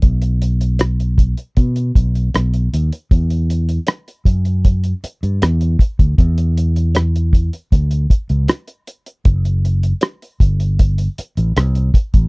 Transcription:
<<
  \new Staff \with { instrumentName = "Fingered electric bass" } { \clef bass \time 4/4 \key b \phrygian \tempo 4 = 78 b,,4.~ b,,16 r16 b,8 b,,8 b,,8 dis,16 r16 | e,4 r8 fis,4 r16 g,16 e,8 r16 d,16 | e,4.~ e,16 r16 d,8 r16 cis,16 r4 | fis,,4 r8 g,,4 r16 a,,16 c,8 r16 a,,16 | }
  \new DrumStaff \with { instrumentName = "Drums" } \drummode { \time 4/4 <hh bd>16 hh16 hh16 hh16 <hh ss>16 hh16 <hh bd>16 hh16 <hh bd>16 hh16 <hh bd>16 hh16 <hh ss>16 hh16 hh16 hh16 | <hh bd>16 hh16 hh16 hh16 <hh ss>16 hh16 <hh bd>16 hh16 <hh bd>16 hh16 hh16 hh16 <hh ss>16 hh16 <hh bd>16 <hh bd>16 | <hh bd>16 hh16 hh16 hh16 <hh ss>16 hh16 <hh bd>16 hh16 <hh bd>16 hh16 <hh bd>16 hh16 <hh ss>16 hh16 hh16 hh16 | <hh bd>16 hh16 hh16 hh16 <hh ss>16 hh16 <hh bd>16 hh16 <hh bd>16 hh16 hh16 hh16 <hh ss>16 hh16 <hh bd>16 <hh bd>16 | }
>>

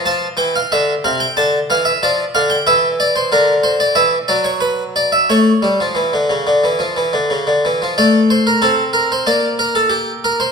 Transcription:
<<
  \new Staff \with { instrumentName = "Harpsichord" } { \time 4/4 \key d \phrygian \tempo 4 = 92 a''8 g''16 f''16 e''8 f''16 g''16 a''8 f''16 e''16 d''8 f''16 g''16 | \key a \phrygian e''8 d''16 c''16 bes'8 c''16 d''16 e''8 d''16 cis''16 b'8 d''16 e''16 | cis''2.~ cis''8 r8 | d''8 c''16 bes'16 a'8 bes'16 c''16 d''8 bes'16 a'16 g'8 bes'16 c''16 | }
  \new Staff \with { instrumentName = "Harpsichord" } { \clef bass \time 4/4 \key d \phrygian f8 e8 d8 c8 d8 e8 f8 d8 | \key a \phrygian e4 d4 e8 fis4. | a8 g16 f16 e16 d16 cis16 d16 e16 f16 e16 d16 cis16 d16 e16 f16 | a4 c'4 bes2 | }
>>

